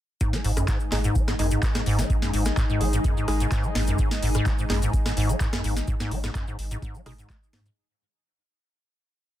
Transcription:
0.21 G#2 D#3 D#4 G#4, kick, closed hi-hat, cabasa
0.33 G#3, snare, cabasa
0.44 G#1 G#2, open hi-hat
0.57 F#2, cross-stick, closed hi-hat, cabasa
0.68 G#2, kick, clap, closed hi-hat, cabasa
0.80 cabasa
0.92 G#1 G#2 G#3 D#4 G#4, snare, clap, open hi-hat
1.04 G#2, closed hi-hat, cabasa
1.15 G#3, kick, closed hi-hat, cabasa
1.28 G#2, cross-stick, snare, cabasa
1.39 G#1 F#2 G#3 D#4 G#4, open hi-hat
1.51 G#2, closed hi-hat, cabasa
1.63 kick, clap, closed hi-hat, cabasa
1.75 G#2, cross-stick, snare, cabasa
1.86 G#1 G#2, open hi-hat
1.99 G#3, snare, closed hi-hat, cabasa
2.10 G#2, kick, closed hi-hat, cabasa
2.22 F#2, snare, cabasa
2.33 G#1 G#2, open hi-hat
2.45 cross-stick, snare, closed hi-hat, cabasa
2.57 G#2, kick, clap, closed hi-hat, cabasa
2.70 G#2, cabasa
2.81 G#1 G#3 D#4 G#4, open hi-hat
2.93 G#2, closed hi-hat, cabasa
3.04 F#2, kick, closed hi-hat, cabasa
3.17 G#2, cabasa
3.28 G#1 G#3 D#4 G#4, cross-stick, open hi-hat
3.40 G#2, closed hi-hat, cabasa
3.52 G#2, kick, clap, closed hi-hat, cabasa
3.63 G#3, cabasa
3.75 G#1 G#2, snare, open hi-hat
3.87 F#2, closed hi-hat, cabasa
3.98 kick, closed hi-hat, cabasa
4.11 snare, cabasa
4.22 G#1 G#2, open hi-hat
4.34 G#2, cross-stick, closed hi-hat, cabasa
4.46 G#3, kick, clap, closed hi-hat, cabasa
4.58 G#2, cabasa
4.70 G#1 F#2 G#3 D#4 G#4, snare, clap, open hi-hat
4.82 G#2, closed hi-hat, cabasa
4.93 kick, closed hi-hat, cabasa
5.06 G#2, cross-stick, snare, cabasa
5.17 G#1 G#2, open hi-hat
5.29 G#3, closed hi-hat, cabasa
5.40 G#2, kick, clap, closed hi-hat, cabasa
5.53 F#2, cross-stick, snare, cabasa
5.64 G#1 G#2, open hi-hat
5.77 snare, closed hi-hat, cabasa
5.88 G#2, kick, closed hi-hat, cabasa
6.00 G#2, snare, cabasa
6.11 G#1 G#3, open hi-hat
6.24 G#2, cross-stick, snare, closed hi-hat, cabasa
6.35 F#2, kick, clap, closed hi-hat, cabasa
6.47 G#2, cabasa
6.59 G#1, open hi-hat
6.71 G#2, closed hi-hat, cabasa
6.82 G#2, kick, closed hi-hat, cabasa
6.95 G#3, cabasa
7.06 G#1 B2 G#3 D#4 G#4, cross-stick, open hi-hat
7.18 G#2, closed hi-hat, cabasa
7.30 G#3, kick, clap, closed hi-hat, cabasa
7.43 cabasa
7.53 G#2, snare, open hi-hat
7.66 G#2, closed hi-hat, cabasa

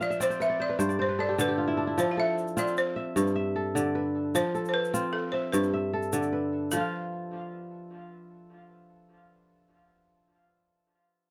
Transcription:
Already playing: F3 A4 B4 D5
0.01 D5 F5, shaker
0.10 E5, shaker
0.20 C4 C5 D5, shaker
0.30 C5, shaker
0.40 B4 E5, shaker
0.50 D5
0.60 C5 D5
0.69 B4
0.79 G2 C5, shaker
0.89 D5, shaker
0.99 C5
1.09 B4
1.19 A4 D5
1.29 G4
1.38 D3 A4 B4, shaker
1.48 G4
1.58 F4
1.67 E4
1.77 D4
1.87 E4
1.98 F3 C5, shaker
2.11 F5
2.17 A4 E5
2.38 shaker
2.48 shaker
2.57 C4 F4 D5, shaker
2.67 shaker
2.77 C5, shaker
2.96 E5
3.16 G2 B4, shaker
3.27 shaker
3.36 E5
3.56 A4
3.75 D3 D5, shaker
3.95 B4
4.35 F3 C5, shaker
4.55 A4, shaker
4.65 C5, shaker
4.74 B4
4.85 shaker
4.94 C4 F4, shaker
5.13 A4
5.32 C5 E5
5.52 G2 B4, shaker
5.63 shaker
5.73 E5
5.93 A4
6.03 shaker
6.13 D3 D5, shaker
6.23 shaker
6.33 B4
6.71 F3 A4, shaker
6.76 F4
6.81 F5

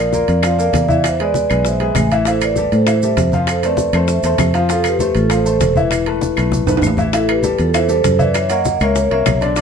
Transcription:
Already playing: A#1 A#4 D5
0.13 A#3 F4 A#4, high bongo, high conga, maracas
0.28 F2, high conga, high timbale, maracas
0.43 F3 F4 D5 F5, high bongo, high conga, high timbale, claves, maracas
0.58 A#3 A4 A#4, high conga, maracas
0.62 D5 F5
0.73 E2, high bongo, low bongo, high conga, high timbale, low timbale, maracas
0.88 E3 E4 E5, high conga, maracas
1.04 high bongo, high conga, high timbale, claves, maracas
1.08 C5 E5
1.19 G#3 G#4 B4 D5, high bongo, high conga, high timbale
1.23 B4
1.34 high bongo, high conga, maracas
1.50 B1 G#3 G#4 B4, high bongo, high timbale, claves, maracas
1.64 C5 E5, high bongo, high conga, maracas
1.80 G#3 G#4 B4 E5 G#5, high bongo, high conga, high timbale
1.95 A1, high bongo, low bongo, high conga, high timbale, low timbale, claves, maracas
2.11 E3 E4 E5, high conga, high timbale, maracas
2.25 E3 E4 A4 C5 E5, high bongo, high conga, high timbale, maracas
2.41 B4 D5, high conga, high timbale, claves, maracas
2.56 G3 G4 A4, high bongo, high conga, maracas
2.71 A2 A4 C5, high conga, high timbale, maracas
2.86 E3 E4 E5, high bongo, high conga, high timbale, claves, maracas
2.91 C5
3.02 G3 G4 A4 C5 E5, high conga, maracas
3.17 F2, high bongo, low bongo, high conga, high timbale, low timbale, maracas
3.32 F3 F4 F5, high conga, maracas
3.47 A4 C5, high bongo, high conga, high timbale, claves, maracas
3.62 A3 C4 A4 B4 D5, high bongo, high conga, high timbale, maracas
3.77 high bongo, high conga, maracas
3.92 F2 A3 A4 C5, high bongo, high conga, high timbale, claves, maracas
4.07 C5 E5, high bongo, high conga, maracas
4.23 E2 A3 A4 C5 E5, high bongo, high conga, high timbale, maracas
4.38 F2, high bongo, low bongo, high conga, high timbale, low timbale, claves, maracas
4.53 F3 F4 F5, high conga, high timbale, maracas
4.69 F3 F4 A4 F5, high bongo, high conga, high timbale, maracas
4.84 B4, high conga, high timbale, claves, maracas
4.88 G4
4.99 A3 A4 C5, high bongo, high conga, maracas
5.15 A1 F4 A4, high conga, high timbale, maracas
5.29 F3 F4 A4 C5 F5, high bongo, high conga, high timbale, claves, maracas
5.45 A3 A4 C5, high conga, maracas
5.60 E1, high bongo, low bongo, high conga, high timbale, low timbale, maracas
5.76 E3 E4 B4 E5, high conga, maracas
5.91 high bongo, high conga, high timbale, claves, maracas
6.06 A3 A4 B4, high bongo, high conga, high timbale
6.21 high bongo, high conga, maracas
6.36 B1 A3 A4 B4, high bongo, high conga, high timbale, claves, maracas
6.52 high bongo, high conga, maracas
6.67 B1 A3 A4 B4, low conga, high timbale, maracas
6.77 high timbale
6.82 A1, low bongo, low conga, claves, maracas
6.87 low timbale
6.97 E3 E4 E5, low bongo, low conga, low timbale, maracas
7.12 E3 E4 A4 E5, high bongo, high conga, high timbale, maracas
7.28 G4 B4, high conga, high timbale, claves
7.43 G3 G4 A4, high bongo, high conga, maracas
7.58 E2 F4 A4, high conga, high timbale, maracas
7.74 E3 E4 A4 C5 E5, high bongo, high conga, high timbale, claves, maracas
7.88 G3 G4 A4 C5, high conga, maracas
8.04 F#2, high bongo, low bongo, high conga, high timbale, maracas
8.18 E3 E4 B4 D5 E5, high conga, maracas
8.34 C#5 E5, high bongo, high conga, high timbale, claves, maracas
8.49 A#3 A#4 C#5 D#5 F#5, high bongo, high conga, high timbale, maracas
8.65 high bongo, high conga, maracas
8.80 C#2 A#3 A#4 C#5 E5, high bongo, high conga, high timbale, claves, maracas
8.96 A#4 C#5, high bongo, high conga, maracas
9.10 C2 A#3 A#4 C#5 E5, high bongo, high conga, high timbale
9.26 B1, high bongo, low bongo, high conga, high timbale, low timbale, claves, maracas
9.41 D3 D4 D5, high timbale, maracas
9.56 D3 D4 D5, high bongo, high conga, high timbale, maracas

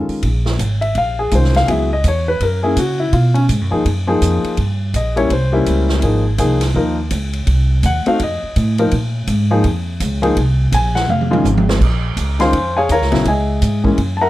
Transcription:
Already playing: D#3 G#3 C#4 F4
0.08 muted upright bass stroke, open hi-hat
0.23 A#1, kick, ride
0.46 snare
0.59 G#1, kick, hi-hat pedal, ride
0.81 E5, ride
0.95 A#1 F5, kick, ride
1.19 G#4
1.31 C2 D#3 G#3 C#4 F4 C5, kick, hi-hat pedal, ride
1.44 snare
1.54 F5, snare, ride
1.67 C#2 F#3 B3 E4 G#4 E5, kick, ride
1.93 D#5
2.04 E2 C#5, kick, hi-hat pedal, ride
2.28 B4
2.40 F#2 A#4, kick, ride
2.63 A#3 C#4 E4 G#4
2.76 C#3 F#4, kick, hi-hat pedal, ride
3.00 E4
3.13 B2 F4, kick, ride
3.34 C#4, ride
3.49 G#2, kick, hi-hat pedal, ride
3.61 F#2
3.71 D#2 F3 A#3 D#4 G#4
3.85 F#2, kick, ride
4.07 F3 A#3 D#4 G#4
4.22 F2, kick, hi-hat pedal, ride
4.44 muted upright bass stroke, ride
4.57 G2, kick, ride
4.94 A#1 D#5, kick, hi-hat pedal, ride
5.16 G3 A#3 C#4 E4 C#5, ride
5.30 C2 C5, kick, ride
5.52 G3 A#3 C#4 E4
5.66 C#2, kick, hi-hat pedal, ride
5.89 snare
6.02 G#1 F3 A#3 D#4 G#4, kick, ride
6.38 C2 F3 A#3 D#4 G#4, kick, hi-hat pedal, ride
6.61 snare, ride
6.74 D#2 F3 A#3 D#4 A#4, kick
7.11 C#2, kick, hi-hat pedal, ride
7.33 ride
7.47 C2, kick, ride
7.83 D#2 F#5, kick, hi-hat pedal, ride
8.06 A3 C4 D#4 F#4 F5, muted upright bass stroke, ride
8.20 F2 D#5, kick, ride
8.43 muted upright bass stroke
8.56 A2, kick, hi-hat pedal, ride
8.78 F3 A#3 D#4 A#4, ride
8.91 A#2, kick, ride
9.27 G#2, kick, hi-hat pedal, ride
9.51 F3 A#3 D#4 G#4
9.64 F2, kick, ride
10.00 C#2, kick, hi-hat pedal, ride
10.22 F3 A#3 D#4 G#4, ride
10.37 C2, kick, ride
10.72 A#1 G#5, kick, hi-hat pedal, ride
10.95 F#5, snare
11.08 F1 F5, high tom
11.21 high tom
11.31 D#3 G#3 C#4 F4, high tom
11.44 G#1, hi-hat pedal, high tom
11.57 high tom
11.69 snare
11.80 A#1, kick, crash
12.17 C#2, kick, hi-hat pedal, ride
12.39 D#3 G#3 C#4 F4 C5 F5 G#5 C6, snare, ride
12.53 F2, kick, ride
12.77 G#4 C#5 F5 G#5
12.89 D#2 A#4 C#5 F5 A#5, kick, hi-hat pedal, ride
13.01 C#2, snare
13.11 A#1 C#3 F#3 B3 E4, snare, ride
13.25 C#2 G#4 D#5 E5 G#5, kick, ride
13.62 G#2, kick, hi-hat pedal, ride
13.84 E3 G#3 A#3 C#4, kick
13.98 F#2, kick, ride
14.17 A5
14.21 A#4 E5 F#5 A#5

